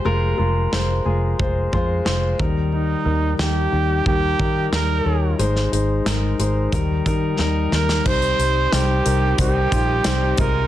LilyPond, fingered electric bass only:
\new Staff \with { instrumentName = "Fingered electric bass" } { \clef bass \time 4/4 \key c \phrygian \tempo 4 = 90 f,,8 f,,8 f,,8 f,,8 f,,8 f,8 f,,8 ees,8~ | ees,8 ees,8 ees,8 ees,8 ees,8 ees8 ees,8 ees,8 | aes,,8 aes,,8 aes,,8 aes,,8 ees,8 ees8 ees,8 ees,8 | c,8 c,8 c,8 c,8 c,8 bes,,8 c,8 c,8 | }